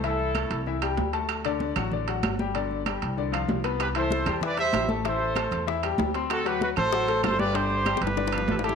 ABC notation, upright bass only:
X:1
M:4/4
L:1/8
Q:1/4=192
K:Am
V:1 name="Upright bass" clef=bass
C,,3 C,,3 D,,2- | D,,3 A,,,3 G,,,2- | G,,,3 C,,3 C,,2- | C,,3 E,,3 A,,,2- |
A,,,3 E,,3 D,,2- | D,,3 A,,,3 G,,,2- | G,,,3 G,,,3 A,,,2 |]